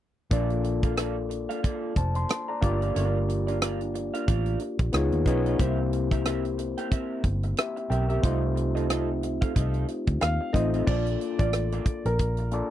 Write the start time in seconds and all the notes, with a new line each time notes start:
0.31 A#1 A#3 D4 F4 A4 D5, kick, closed hi-hat
0.50 closed hi-hat
0.63 muted clean electric guitar stroke, closed hi-hat
0.83 A#3 F4 A4 D5, kick, closed hi-hat
0.97 A#3 F4 A4 D5, cross-stick, closed hi-hat
1.29 muted clean electric guitar stroke, closed hi-hat
1.49 A#3 F4 A4 F5, closed hi-hat
1.63 A#3 F4 A4 D5, kick, closed hi-hat
1.96 F1 C5 A5, muted clean electric guitar stroke, kick, closed hi-hat
2.15 C6, muted clean electric guitar stroke, closed hi-hat
2.29 muted clean electric guitar stroke, cross-stick, closed hi-hat
2.48 D5 A#5, muted clean electric guitar stroke
2.61 G1 A#3 D4 F4 G4 A#4 D5, kick, closed hi-hat
2.81 D4 F4 A#4 D5, closed hi-hat
2.95 G1 D4 F4 A#4 D5, closed hi-hat
3.28 muted clean electric guitar stroke, closed hi-hat
3.47 D4 F4 A#4 D5, closed hi-hat
3.61 D4 F4 A#4 D5, cross-stick, closed hi-hat
3.81 closed hi-hat
3.94 muted clean electric guitar stroke, closed hi-hat
4.14 D4 F4 A#4 F5, closed hi-hat
4.28 A1 D4 F4 A#4 D5, kick, closed hi-hat
4.46 closed hi-hat
4.60 muted clean electric guitar stroke, closed hi-hat
4.79 A#1, muted clean electric guitar stroke, kick, closed hi-hat
4.93 C#2 B3 D#4 F4 G#4 C#5, muted clean electric guitar stroke, cross-stick, closed hi-hat
5.12 D#2, muted clean electric guitar stroke, closed hi-hat
5.25 B1 B3 C#4 D#4 F4 G#4 B4 C#5 D#5, kick, closed hi-hat
5.46 C#4 F4 B4 D#5, closed hi-hat
5.58 C2 A#3 C4 E4 G4 A#4 C5 E5, kick, closed hi-hat
5.93 muted clean electric guitar stroke, closed hi-hat
6.11 C4 G4 A#4 E5, kick, closed hi-hat
6.25 C4 G4 A#4 E5, cross-stick, closed hi-hat
6.45 closed hi-hat
6.58 muted clean electric guitar stroke, closed hi-hat
6.78 C4 G4 A#4 G5, cross-stick, closed hi-hat
6.91 C4 G4 A#4 E5, kick, closed hi-hat
7.24 G1, muted clean electric guitar stroke, kick, closed hi-hat
7.43 muted clean electric guitar stroke, closed hi-hat
7.57 G4 E5, muted clean electric guitar stroke, cross-stick, closed hi-hat
7.76 muted clean electric guitar stroke, closed hi-hat
7.90 B1 C4 G4 A#4 E5 G5, closed hi-hat
8.09 C4 G4 A#4 E5, closed hi-hat
8.22 C2 A3 C4 D#4 F4 A4 C5 D#5, kick, closed hi-hat
8.56 muted clean electric guitar stroke, closed hi-hat
8.75 C4 F4 A4 D#5, closed hi-hat
8.89 C4 F4 A4 D#5, cross-stick, closed hi-hat
9.23 muted clean electric guitar stroke, closed hi-hat
9.41 C4 F4 A4 F5, kick, closed hi-hat
9.55 C2 C4 F4 A4 D#5, kick, closed hi-hat
9.74 closed hi-hat
9.88 muted clean electric guitar stroke, closed hi-hat
10.07 D2, muted clean electric guitar stroke, kick, closed hi-hat
10.21 D#2 F5, muted clean electric guitar stroke, cross-stick, closed hi-hat
10.41 muted clean electric guitar stroke
10.53 A1 A3 C4 D#4 F4 A4 C5 D#5, kick, closed hi-hat
10.74 C4 F4 A4 D#5, closed hi-hat
10.87 A#1 A#3 D4 F4 A4 C5 D5, kick, crash
10.96 D5
11.06 closed hi-hat
11.21 muted clean electric guitar stroke, closed hi-hat
11.39 A1 A#3 F4 A4 D5, kick, closed hi-hat
11.53 muted clean electric guitar stroke, cross-stick, closed hi-hat
11.72 A#3 F4 A4 D5, closed hi-hat
11.86 muted fingered electric bass stroke, muted clean electric guitar stroke, kick, closed hi-hat
12.05 A#1 A#4, muted clean electric guitar stroke, closed hi-hat
12.19 muted clean electric guitar stroke, kick, closed hi-hat
12.37 muted clean electric guitar stroke, closed hi-hat
12.51 A#3 D4 F4 A4 D5, closed hi-hat